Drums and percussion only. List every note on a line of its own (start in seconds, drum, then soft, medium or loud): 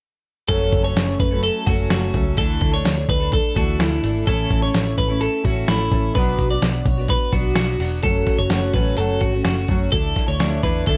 0.49 kick loud
0.49 closed hi-hat medium
0.72 kick medium
0.72 closed hi-hat medium
0.97 snare loud
0.97 closed hi-hat medium
1.20 kick medium
1.20 closed hi-hat medium
1.43 closed hi-hat medium
1.67 kick medium
1.67 closed hi-hat medium
1.90 snare loud
1.90 closed hi-hat loud
2.14 kick medium
2.14 closed hi-hat medium
2.37 kick loud
2.37 closed hi-hat medium
2.61 kick medium
2.61 closed hi-hat medium
2.85 snare loud
2.85 closed hi-hat medium
3.09 kick medium
3.09 closed hi-hat medium
3.32 kick medium
3.32 closed hi-hat medium
3.56 kick medium
3.56 closed hi-hat medium
3.80 snare loud
3.80 closed hi-hat medium
4.04 closed hi-hat medium
4.27 kick loud
4.27 closed hi-hat medium
4.50 kick medium
4.50 closed hi-hat medium
4.74 snare medium
4.74 closed hi-hat medium
4.98 kick medium
4.98 closed hi-hat medium
5.21 closed hi-hat medium
5.45 kick medium
5.45 closed hi-hat medium
5.68 snare loud
5.68 closed hi-hat medium
5.92 kick loud
5.92 closed hi-hat medium
6.15 kick loud
6.15 closed hi-hat medium
6.39 kick medium
6.39 closed hi-hat medium
6.62 snare loud
6.62 closed hi-hat medium
6.86 kick medium
6.86 closed hi-hat medium
7.08 kick medium
7.08 closed hi-hat medium
7.32 kick medium
7.32 closed hi-hat medium
7.56 snare loud
7.56 closed hi-hat medium
7.80 open hi-hat medium
8.03 kick medium
8.03 closed hi-hat medium
8.27 kick medium
8.27 snare soft
8.27 closed hi-hat medium
8.50 snare loud
8.50 closed hi-hat medium
8.74 kick medium
8.74 closed hi-hat medium
8.97 closed hi-hat medium
9.21 kick medium
9.21 closed hi-hat medium
9.45 snare loud
9.45 closed hi-hat medium
9.68 kick medium
9.68 closed hi-hat medium
9.92 kick loud
9.92 closed hi-hat medium
10.16 kick medium
10.16 snare soft
10.16 closed hi-hat medium
10.40 snare loud
10.40 closed hi-hat medium
10.63 kick medium
10.63 closed hi-hat medium
10.86 kick medium
10.86 closed hi-hat medium